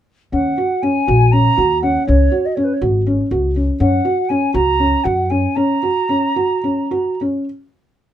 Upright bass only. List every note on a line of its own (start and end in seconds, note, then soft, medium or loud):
0.33 0.52 D#2 medium
1.08 1.46 A#1 medium
1.58 1.96 D#2 medium
2.08 2.27 C#2 medium
2.82 3.19 G#1 medium
3.31 3.69 C#2 medium
3.80 3.99 F#2 medium
4.55 4.93 C#2 medium
5.05 5.44 F#2 medium